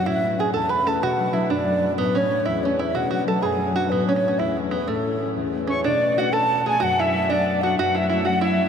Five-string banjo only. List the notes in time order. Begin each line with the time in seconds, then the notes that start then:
0.06 E4
0.40 G#4
0.54 A4
0.69 B4
0.87 A4
1.03 F#4
1.33 E4
1.50 D4
1.98 B3
2.15 C#4
2.45 E4
2.65 C#4
2.79 E4
2.95 F#4
3.11 F#4
3.28 A4
3.43 G#4
3.76 F#4
3.92 B3
4.09 C#4
4.16 C#4
4.28 C#4
4.39 E4
4.71 B3
4.88 A3
5.67 C#4
5.84 D4
6.18 F#4
6.33 A4
6.66 G#4
6.80 F#4
6.99 E4
7.30 D4
7.63 F#4
7.79 F#4
7.95 E4
8.10 E4
8.25 F#4
8.41 E4